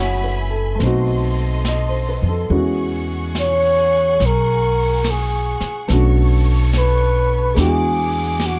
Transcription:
0.00 0.77 F#1 medium
0.00 0.74 A3 medium
0.00 0.77 B3 medium
0.00 0.81 C#4 soft
0.00 0.81 E4 soft
0.00 0.49 F#4 medium
0.00 0.81 G#4 medium
0.00 0.49 C#5 soft
0.00 0.76 E5 medium
0.00 0.78 G#5 medium
0.00 0.78 B5 medium
0.24 0.68 B4 soft
0.50 0.95 A4 soft
0.75 2.48 A3 medium
0.75 2.49 B3 soft
0.80 2.18 B1 medium
0.80 2.51 C4 soft
0.80 2.52 D#4 soft
0.80 2.50 A4 medium
0.80 2.51 D#5 medium
0.80 2.50 C6 medium
0.80 brush sweep soft
0.80 snare soft
0.86 2.50 F#4 medium
1.65 2.07 D#5 soft
1.65 snare soft
1.65 hi-hat pedal medium
1.89 2.24 C5 soft
2.09 2.35 B4 soft
2.22 2.49 F2 medium
2.29 2.59 A4 soft
2.50 4.16 E2 medium
2.50 5.89 G#3 soft
2.50 5.87 B3 soft
2.50 5.89 C#4 soft
2.50 5.90 E4 soft
2.50 5.90 F#4 medium
2.50 brush sweep soft
2.55 5.88 G#4 medium
2.55 5.88 F#5 medium
2.55 5.88 C#6 medium
3.35 snare soft
3.35 hi-hat pedal medium
3.39 4.27 C#5 medium
4.20 5.57 B1 medium
4.20 brush sweep soft
4.20 snare soft
4.26 5.12 A#4 medium
5.04 snare soft
5.04 hi-hat pedal medium
5.10 5.92 G#4 medium
5.60 muted upright bass stroke soft
5.60 snare soft
5.88 7.54 B1 medium
5.88 7.56 A3 soft
5.88 7.55 B3 soft
5.88 7.58 C#4 soft
5.88 7.55 D4 soft
5.88 7.56 A4 medium
5.88 7.57 C#5 medium
5.88 7.56 C#6 medium
5.88 brush sweep soft
5.88 snare soft
5.93 7.58 F#4 medium
6.73 snare soft
6.73 hi-hat pedal medium
6.78 7.55 B4 loud
7.55 8.59 E2 medium
7.55 8.59 G#3 medium
7.55 8.59 B3 soft
7.55 8.59 D4 soft
7.55 8.59 E4 soft
7.55 8.59 G#4 medium
7.55 brush sweep soft
7.55 snare soft
7.59 8.59 F#4 medium
7.59 8.48 G#4 medium
7.59 8.59 F#5 medium
7.59 8.59 D6 medium
8.40 snare soft
8.40 hi-hat pedal soft
8.46 8.59 F#4 medium

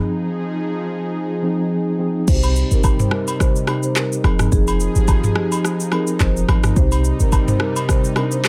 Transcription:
0.00 0.65 F3 medium
0.00 2.25 F3 medium
0.00 0.66 C4 medium
0.00 0.66 D#4 medium
0.00 2.25 D#4 medium
0.00 0.66 G#4 loud
0.00 2.25 G#4 medium
1.43 1.85 F3 medium
1.43 1.86 C4 medium
1.43 1.86 D#4 medium
1.43 1.87 G#4 medium
1.99 2.20 F3 medium
1.99 2.21 C4 medium
1.99 2.21 D#4 medium
1.99 2.22 G#4 medium
2.27 2.63 C2 loud
2.27 3.09 C3 medium
2.27 4.22 C3 medium
2.27 4.22 G3 medium
2.27 3.10 C4 medium
2.27 8.48 D#4 medium
2.27 3.10 D#4 medium
2.27 2.36 F#4 medium
2.27 2.41 C5 loud
2.27 kick loud
2.27 crash medium
2.27 shaker medium
2.36 3.14 G4 medium
2.43 high agogo medium
2.43 shaker medium
2.56 shaker soft
2.71 3.05 G1 medium
2.71 2.82 A#4 medium
2.71 shaker soft
2.84 kick medium
2.84 high agogo medium
2.84 low woodblock medium
2.84 shaker medium
2.99 3.10 C5 medium
2.99 mid tom medium
2.99 shaker medium
3.11 3.25 A#4 medium
3.11 cross-stick loud
3.27 high agogo medium
3.27 shaker medium
3.40 3.53 C5 medium
3.40 kick loud
3.40 cross-stick medium
3.40 shaker medium
3.56 shaker medium
3.67 4.24 C3 medium
3.67 4.22 C4 medium
3.67 4.23 D#4 medium
3.67 4.25 G4 medium
3.67 cross-stick loud
3.67 high agogo medium
3.83 3.94 C5 medium
3.83 shaker soft
3.96 4.37 A#4 medium
3.96 cross-stick loud
3.96 clap loud
3.96 shaker medium
4.12 shaker medium
4.23 4.47 F1 medium
4.23 5.14 F3 medium
4.23 6.74 F3 medium
4.23 5.14 C4 medium
4.23 5.15 D#4 medium
4.23 6.74 G#4 medium
4.23 5.15 G#4 medium
4.23 cross-stick medium
4.23 high agogo medium
4.39 cross-stick loud
4.39 mid tom medium
4.39 shaker medium
4.52 4.88 F1 loud
4.52 4.65 G#4 loud
4.52 kick loud
4.52 shaker medium
4.67 high agogo medium
4.67 shaker medium
4.80 shaker medium
4.95 5.29 G1 medium
4.95 5.06 G4 medium
4.95 shaker soft
5.08 kick medium
5.08 high agogo medium
5.08 low woodblock medium
5.08 shaker medium
5.24 5.35 G#4 medium
5.24 mid tom medium
5.24 shaker medium
5.36 5.50 G4 medium
5.36 cross-stick loud
5.52 high agogo medium
5.52 shaker medium
5.65 cross-stick medium
5.65 shaker medium
5.80 shaker medium
5.91 6.54 F3 medium
5.91 6.54 C4 medium
5.91 6.54 D#4 medium
5.91 6.06 G#4 medium
5.91 6.55 A#4 medium
5.91 cross-stick medium
5.91 high agogo medium
6.07 shaker medium
6.20 6.43 F1 loud
6.20 6.61 C5 medium
6.20 kick loud
6.20 cross-stick loud
6.20 clap loud
6.20 shaker medium
6.37 shaker medium
6.48 6.71 G#1 medium
6.48 cross-stick loud
6.48 high agogo medium
6.64 cross-stick loud
6.64 mid tom loud
6.64 shaker medium
6.75 7.12 C2 loud
6.75 7.58 C3 medium
6.75 8.48 C3 medium
6.75 8.48 G3 medium
6.75 7.58 C4 medium
6.75 7.59 D#4 medium
6.75 7.59 G4 medium
6.75 6.90 C5 loud
6.75 kick loud
6.75 shaker medium
6.92 high agogo medium
6.92 shaker medium
7.04 shaker medium
7.20 7.53 G1 medium
7.20 7.31 A#4 medium
7.20 shaker medium
7.32 kick medium
7.32 high agogo medium
7.32 low woodblock medium
7.32 shaker medium
7.48 7.59 C5 medium
7.48 mid tom loud
7.48 shaker medium
7.60 7.74 A#4 medium
7.60 cross-stick loud
7.76 high agogo medium
7.76 shaker medium
7.89 8.02 C5 medium
7.89 kick loud
7.89 cross-stick medium
7.89 shaker medium
8.04 shaker medium
8.15 8.48 C3 medium
8.15 8.48 C4 medium
8.15 8.24 D4 medium
8.15 8.48 A#4 medium
8.15 cross-stick loud
8.15 high agogo medium
8.24 8.48 D#4 medium
8.31 8.43 C5 medium
8.31 shaker medium
8.45 cross-stick loud
8.45 clap loud
8.45 shaker medium

